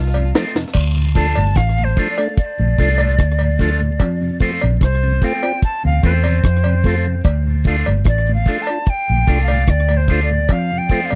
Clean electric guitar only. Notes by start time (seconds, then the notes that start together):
0.34 F3 A3 C4 F4
1.15 F3 A3 D4 F4
1.97 F3 A3 D4 F4
2.78 F3 A3 D4 F4
2.98 F3 A3 D4 F4
3.38 muted clean electric guitar stroke
3.60 F3 A3 D4 F4
4.41 F3 A3 C4 F4
5.22 F3 A3 C4 F4
6.02 F3 A3 C4 F4
6.24 F3 A3 C4 F4
6.65 muted clean electric guitar stroke
6.85 F3 A3 C4 F4
7.66 F3 A3 D4 F4
8.46 F3 A3 D4 F4
9.27 F3 A3 D4 F4
9.48 F3 A3 D4 F4
9.89 muted clean electric guitar stroke
10.08 F3 A3 D4 F4
10.90 F3 A3 C4 F4